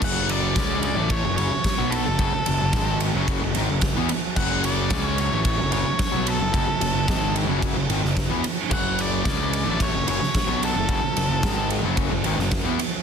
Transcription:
0.00 F#1 F#2 C#3 F#3 F#4 A5, kick, crash
0.04 F#5
0.29 D5, ride
0.56 C#2 C#3 G#3 C#4, kick, snare, ride
0.83 D5, ride
0.96 A1 A2 E3 A3
1.10 C#5, kick, ride
1.24 F#1 F#2 C#3
1.36 F#1 F#2 C#3 C#5, ride
1.51 muted distorted electric guitar stroke, muted picked electric bass stroke
1.64 kick, snare, ride
1.77 B1 B2 F#3 B3
1.91 A4, ride
2.06 F#1 F#2 C#3
2.18 F#1 F#2 C#3, kick, ride
2.34 muted distorted electric guitar stroke, muted picked electric bass stroke
2.46 F#1 F#2 C#3, ride
2.60 F#1 F#2 C#3
2.73 G#1 G#2 D#3 G#3, kick, snare, ride
3.00 ride
3.14 F#1 F#2 C#3 F#3
3.28 kick, ride
3.42 F#1 F#2 C#3
3.55 G#1 G#2 D#3, ride
3.70 F#1 F#2 C#3
3.81 kick, snare, ride
3.96 E2 E3 B3
4.09 muted distorted electric guitar stroke, muted picked electric bass stroke, ride
4.36 F#1 F#2 C#3 F#3 F#5, kick, crash
4.64 D5, ride
4.90 C#2 C#3 G#3 C#4, kick, snare, ride
5.05 C#5
5.18 C#5, ride
5.31 A1 A2 E3 A3
5.45 kick, ride
5.59 F#1 F#2 C#3
5.71 F#1 F#2 C#3 C#5, ride
5.85 muted distorted electric guitar stroke, muted picked electric bass stroke
5.99 kick, snare, ride
6.11 B1 B2 F#3 B3
6.27 A4, ride
6.39 F#1 F#2 C#3
6.52 F#1 F#2 C#3, kick, ride
6.67 muted distorted electric guitar stroke, muted picked electric bass stroke
6.80 F#1 F#2 C#3, ride
6.93 F#1 F#2 C#3
7.07 G#1 G#2 D#3 G#3, kick, snare, ride
7.36 ride
7.47 F#1 F#2 C#3 F#3
7.62 kick, ride
7.75 F#1 F#2 C#3
7.88 G#1 G#2 D#3, ride
8.03 F#1 F#2 C#3, snare
8.17 kick, snare, ride
8.30 E2 E3 B3
8.43 muted distorted electric guitar stroke, muted picked electric bass stroke, ride
8.70 F#1 F#2 C#3 F#3 F#5, kick, crash
8.99 D5, ride
9.25 C#2 C#3 G#3 C#4, kick, snare, ride
9.53 ride
9.65 A1 A2 E3 A3
9.80 C#5, kick, ride
9.94 F#1 F#2 C#3
10.06 F#1 F#2 C#3 C#5, ride
10.21 muted distorted electric guitar stroke, muted picked electric bass stroke, snare
10.35 kick, snare, ride
10.47 B1 B2 F#3 B3
10.63 A4, ride
10.74 F#1 F#2 C#3
10.89 F#2 C#3, kick, ride
11.03 muted distorted electric guitar stroke, muted picked electric bass stroke
11.15 F#1 F#2 C#3, ride
11.28 F#1 F#2 C#3
11.43 G#1 G#2 D#3 G#3, kick, snare, ride
11.70 ride
11.83 F#1 F#2 C#3 F#3
11.97 kick, ride
12.11 F#1 F#2 C#3
12.23 G#1 G#2 D#3, ride
12.37 F#1 F#2 C#3, snare
12.51 kick, snare, ride
12.65 E2 E3 B3
12.78 muted picked electric bass stroke, muted distorted electric guitar stroke, ride

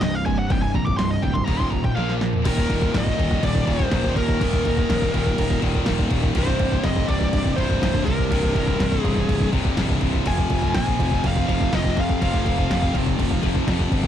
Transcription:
Already playing: C2 G2 C3
0.01 C1 C2 G2 D#5, snare, crash
0.15 F5
0.26 C2 G2 C3 G#5, kick
0.39 F#5
0.50 C1 C2 G2 C3 G5, kick, crash
0.62 G#5
0.74 A#1 C2 G2 A#5, kick
0.86 D6, kick
0.97 C1 C2 G2 C6, snare, crash
1.11 D#5
1.22 D1 C2 G2 G5, kick
1.34 C6, kick
1.45 D#1 D#2 A#2 A#5, kick, crash
1.49 D#3
1.59 C6, kick
1.70 D#2 A#2 A#5, kick
1.84 G5, kick
1.96 A#1 A#2 F3 A#3 F5, snare
2.09 snare
2.20 A#2 F3, snare
2.33 floor tom
2.45 D#1 D#2 A#2 D#3 A#4, kick, crash
2.58 kick
2.68 D#1 D#2 A#2 D#3, kick, crash
2.82 kick
2.93 G#1 D#2 A#2 D#3, kick, snare, crash
2.98 D#5
3.07 kick
3.17 D#1 D#2 A#2 D#3, kick, crash
3.21 D#2
3.31 kick
3.41 D#1 D#2 A#2 D#3 D5, kick, crash
3.55 kick
3.65 D#1 D#2 A#2 D#3, kick, crash
3.71 C5
3.79 kick
3.91 D#1 D#2 A#2 D#3, kick, snare, crash
4.04 kick
4.15 D#2 A#2 D#3 A#4, kick, crash
4.29 kick
4.39 D#1 D#2 A#2 D#3, kick, crash
4.44 D#3
4.53 kick
4.65 D#2 A#2 D#3, kick, crash
4.77 kick
4.89 D#1 D#2 A#2 D#3, kick, snare, crash
5.02 kick
5.14 D#1 D#2 A#2 D#3, kick, crash
5.26 kick
5.38 D#1 D#2 A#2 D#3, kick, crash
5.50 kick
5.62 D#1 D#2 A#2 D#3, kick, crash
5.75 kick
5.86 D#1 D#2 A#2 D#3, kick, snare, crash
5.99 kick
6.11 D#1 D#2 A#2 D#3, kick, crash
6.23 kick
6.35 C1 C2 G2 C3 C5, kick, crash
6.47 kick
6.59 C1 C2 G2 C3, kick, crash
6.72 kick
6.84 F1 C2 G2 C3 D#5, kick, snare, crash
6.96 kick
7.08 C1 C2 G2 C3 D5, kick, crash
7.21 kick
7.33 C1 C2 G2 C3, kick, crash
7.45 kick
7.56 C1 C2 G2 C3 C5, kick, crash
7.70 kick
7.82 C1 C2 G2 C3, kick, snare, crash
7.94 kick
8.05 C2 G2 C3 A#4, kick, crash
8.19 kick
8.31 C1 C2 G2 C3, kick, crash
8.43 kick
8.55 C2 G2 C3, kick, crash
8.67 kick
8.80 C1 C2 G2 C3, kick, snare, crash
8.92 kick
9.01 C1 C3 G#4, kick, crash
9.05 C2 G2 C3
9.16 kick
9.28 C1 C2 G2 C3, kick, crash
9.41 kick
9.52 C1 C2 G2 C3, kick, crash
9.65 kick
9.77 C1 C2 G2 C3, kick, snare, crash
9.89 kick
10.01 C1 C2 G2 C3, kick, crash
10.14 kick
10.26 F1 F2 C3 F3 G#5, kick, crash
10.38 kick
10.50 F1 F2 C3 F3, kick, crash
10.62 kick
10.74 A#1 F2 C3 F3 G#5, kick, snare, crash
10.87 kick
10.99 F1 F2 C3 F3, kick, crash
11.12 kick
11.24 F1 F2 C3 F3 F5, kick, crash
11.36 kick
11.48 F1 F2 C3 F3, kick, crash
11.61 kick
11.72 F1 F2 C3 F3 D#5, kick, snare, crash
11.85 kick
11.97 F2 C3 F3 F5, kick, crash
12.09 kick
12.21 F1 F2 C3 F3, kick, crash
12.34 kick
12.44 F2 C3 F3, kick, crash
12.58 kick
12.69 F1 F2 C3 F3, kick, snare, crash
12.82 kick
12.94 F1 F2 C3 F3, kick, crash
13.07 kick
13.18 F1 F2 C3 F3, kick, crash
13.31 kick
13.43 F1 F2 C3 F3, kick, crash
13.55 kick
13.67 F1 F2 C3 F3, kick, snare, crash
13.79 kick
13.91 G1 F2 C3 F3, kick, crash
14.04 kick

